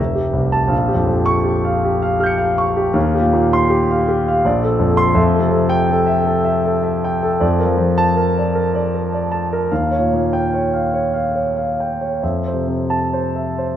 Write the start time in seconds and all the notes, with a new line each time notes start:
0.00 F1 E5
0.15 G4
0.33 C2
0.52 A5
0.67 A#1 F5
0.88 G4
0.94 F2
1.07 F2
1.26 C#6
1.44 G4
1.65 F5
1.85 G4
2.02 F5
2.20 G4 F6 G6
2.26 C#7
2.38 F5
2.58 C#6
2.77 G4
2.93 D#2 F5
3.15 G4
3.20 A#2
3.33 A#2
3.53 C6
3.70 G4
3.91 F5
4.08 G4
4.28 F5
4.45 A#1 D5
4.63 A4
4.79 F2
4.97 C6
5.15 F2 E5
5.34 A4
5.39 C3
5.51 C3
5.69 G5
5.91 A4
6.06 E5
6.25 A4
6.44 E5
6.65 A4
6.83 E5
7.04 G5
7.23 A4
7.40 F2 D5
7.60 A#4
7.65 F3
7.77 F3
7.98 A5
8.17 A#4
8.37 D5
8.55 A#4
8.74 D5
8.94 A#4
9.13 D5
9.32 A5
9.53 A#4
9.71 D#2 F5
9.91 C#5
9.99 A#2
10.13 A#2
10.33 G5
10.54 C#5
10.73 F5
10.94 C#5
11.14 F5
11.35 C#5
11.57 F5
11.80 G5
12.01 C#5
12.23 F2 E5
12.47 C5
12.54 C3
12.67 C3
12.90 A5
13.13 C5
13.35 E5
13.58 C5